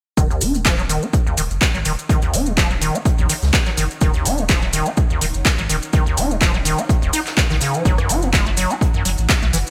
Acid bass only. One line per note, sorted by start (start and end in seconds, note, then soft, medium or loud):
0.17 0.28 D#3 medium
0.30 0.43 D#2 medium
0.41 0.56 D#4 loud
0.54 0.60 F#3 medium
0.65 0.76 F3 medium
0.78 0.82 F#3 medium
0.90 1.04 D#3 medium
1.03 1.06 D#4 loud
1.27 1.36 D#2 medium
1.38 1.42 D#3 medium
1.75 1.78 F#3 medium
1.86 1.93 D#3 medium
2.10 2.20 D#3 medium
2.23 2.35 D#2 medium
2.34 2.48 D#4 loud
2.47 2.53 F#3 medium
2.58 2.68 F3 medium
2.71 2.74 F#3 medium
2.82 2.96 D#3 medium
2.95 2.98 D#4 loud
3.19 3.28 D#2 medium
3.29 3.34 D#3 medium
3.66 3.70 F#3 medium
3.77 3.85 D#3 medium
4.01 4.12 D#3 medium
4.14 4.27 D#2 medium
4.25 4.40 D#4 loud
4.38 4.44 F#3 medium
4.49 4.60 F3 medium
4.62 4.66 F#3 medium
4.73 4.88 D#3 medium
4.86 4.90 D#4 loud
5.10 5.19 D#2 medium
5.21 5.26 D#3 medium
5.58 5.62 F#3 medium
5.69 5.77 D#3 medium
5.93 6.04 D#3 medium
6.06 6.19 D#2 medium
6.17 6.32 D#4 loud
6.30 6.36 F#3 medium
6.41 6.52 F3 medium
6.54 6.58 F#3 medium
6.65 6.80 D#3 medium
6.78 6.82 D#4 loud
7.02 7.11 D#2 medium
7.13 7.20 D#4 medium
7.50 7.56 D#3 loud
7.61 7.76 C#3 medium
7.74 7.83 F3 medium
7.85 7.96 F#3 medium
7.98 8.11 F#2 medium
8.09 8.24 F#4 loud
8.22 8.28 A3 medium
8.33 8.44 G#3 medium
8.46 8.50 A3 medium
8.57 8.72 F#3 medium
8.70 8.74 F#4 loud
8.94 9.03 F#2 medium
9.05 9.10 F#3 medium
9.42 9.46 A3 medium
9.53 9.58 E3 medium